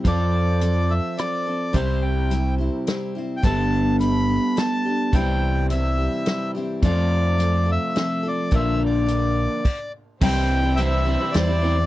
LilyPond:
<<
  \new Staff \with { instrumentName = "Accordion" } { \time 3/4 \key c \mixolydian \tempo 4 = 106 d''4. e''8 d''4 | c''8 g''4 r4 r16. g''32 | a''4 b''4 a''4 | g''4 e''4. r8 |
d''4. e''4 d''8 | e''8 d''2 r8 | g''4 e''4 d''4 | }
  \new Staff \with { instrumentName = "String section" } { \time 3/4 \key c \mixolydian r2. | r2. | r2. | r2. |
r2. | r2. | <e' g' c''>2. | }
  \new Staff \with { instrumentName = "Steel-string acoustic guitar" } { \time 3/4 \key c \mixolydian <f c' f' a'>4 <f c' f' a'>8 <c' f' a'>8 <f c' f' a'>8 <c' f' a'>8 | <c g c' e' g'>4 <g c' e' g'>8 <c' e' g'>8 <g c' e' g'>8 <c' e' g'>8 | <g, d a b d' g'>4 <a b d' g'>8 <a b d' g'>8 <a b d' g'>8 <a b d' g'>8 | <c g c' e' g'>4 <g c' e' g'>8 <c' e' g'>8 <g c' e' g'>8 <c' e' g'>8 |
<f c' f' a'>4 <f c' f' a'>8 <c' f' a'>8 <f c' f' a'>8 <c' f' a'>8 | <bes, d f bes d' bes'>4 <f bes d' bes'>4 r4 | <c g c' e' c''>4 <g c' e' c''>8 <c' e' c''>8 <g c' e' c''>8 <c' e' c''>8 | }
  \new Staff \with { instrumentName = "Clean electric guitar" } { \time 3/4 \key c \mixolydian <f c' f' a'>2. | <c g c' e' g'>2. | <g b d' a'>2. | <c e g c' e'>2. |
<f, c f a c' f'>2. | <bes, d bes d' f'>2 r4 | <c e g c' e'>8. <g c' e'>16 <c e g c' e'>8 <e g c' e'>16 <g c' e'>8 <g c' e'>16 <e g c' e'>8 | }
  \new Staff \with { instrumentName = "Fingered electric bass" } { \clef bass \time 3/4 \key c \mixolydian f,2 r4 | c,2 r4 | g,,2 r4 | c,2 r4 |
f,2 r4 | bes,,2 r4 | c,2 e,4 | }
  \new DrumStaff \with { instrumentName = "Drums" } \drummode { \time 3/4 <hh bd>4 hh4 <hh ss>4 | <hh bd>4 hh4 <hh sn>4 | <hh bd>4 hh4 <hh sn>4 | <hh bd>4 hh4 <hh sn>4 |
<hh bd>4 hh4 <hh sn>4 | <hh bd>4 hh4 <cymc bd>4 | <cymc bd>4 hh4 <hh sn>4 | }
>>